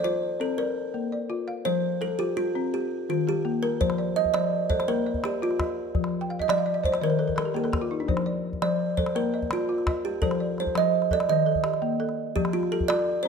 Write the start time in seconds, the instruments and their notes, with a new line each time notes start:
Already playing: balafon A4
0.04 balafon F4, kalimba C5
0.40 balafon C4, kalimba A4
0.58 kalimba A#4, balafon D5
0.94 balafon A#3
1.12 balafon D5
1.30 balafon F4
1.48 balafon F5
1.65 balafon F3, kalimba C5
2.01 balafon A4, kalimba A4
2.19 balafon F4, kalimba G4
2.37 kalimba F4
2.55 balafon C4
2.74 balafon G4, kalimba G4
3.09 balafon D#3, kalimba F4
3.27 balafon G4, kalimba G4
3.45 balafon A#3
3.63 kalimba A#4, balafon A#4
3.81 balafon F3 C5, kalimba C5, calabash thump
3.90 calabash click
3.98 balafon D5
4.16 kalimba D#5
4.25 calabash thump
4.34 balafon F3 C5, kalimba D5, calabash click
4.70 balafon A4, kalimba C5, calabash thump
4.80 kalimba C5, calabash click
4.88 balafon A#3, kalimba A#4
5.06 balafon D#5
5.14 calabash thump
5.24 kalimba G4, balafon D5, calabash click
5.42 balafon F4, kalimba F4
5.51 calabash click
5.60 balafon D#5, calabash thump, calabash click
5.95 balafon F3, calabash thump
6.04 calabash click
6.21 balafon G5
6.30 balafon F5
6.39 balafon D#5, kalimba D#5, calabash thump
6.48 balafon F3 D5, kalimba D5, calabash click
6.58 balafon F5
6.66 balafon D#5
6.74 balafon D5
6.84 balafon C5, kalimba C5, calabash thump
6.92 kalimba C5, balafon D5, calabash click
7.01 balafon D#3 C5, kalimba A#4
7.10 balafon A#4
7.19 balafon A4
7.28 balafon A#4, calabash thump
7.36 balafon A4, kalimba A#4, calabash click
7.45 balafon G4
7.54 balafon A#3 A#4, kalimba G4
7.64 balafon A4, calabash click
7.73 balafon G4, calabash thump, calabash click
7.81 balafon F4
7.91 balafon D#4
8.00 balafon D4
8.08 balafon F3 C5, calabash thump
8.17 calabash click
8.26 balafon D5
8.53 calabash thump
8.62 balafon F3 C5, kalimba D5, calabash click
8.97 balafon A4, kalimba C5, calabash thump
9.06 calabash click
9.15 balafon A#3, kalimba A#4
9.34 balafon D#5
9.43 calabash thump
9.51 kalimba F4, balafon D5, calabash click
9.69 balafon F4
9.78 calabash click
9.87 balafon D#5, calabash thump, calabash click
10.05 kalimba G4
10.22 balafon F3 C5, kalimba A4, calabash thump
10.31 calabash click
10.40 balafon D5
10.58 kalimba C5, calabash click
10.67 calabash thump
10.75 balafon F3 C5, kalimba D#5, calabash click
11.02 calabash click
11.11 balafon A4, kalimba D5, calabash thump
11.20 calabash click
11.29 balafon D#3, kalimba D#5, calabash click
11.46 balafon A4
11.55 calabash thump
11.64 balafon G4, calabash click
11.74 calabash click
11.82 balafon A#3
12.00 balafon A4
12.09 calabash click
12.36 balafon F3, kalimba G4, calabash thump
12.45 calabash click
12.53 kalimba F4, calabash click
12.63 calabash click
12.72 balafon G4, kalimba A4
12.81 calabash thump
12.88 balafon F4 A4, kalimba D5, calabash click
12.99 calabash click
13.23 kalimba C5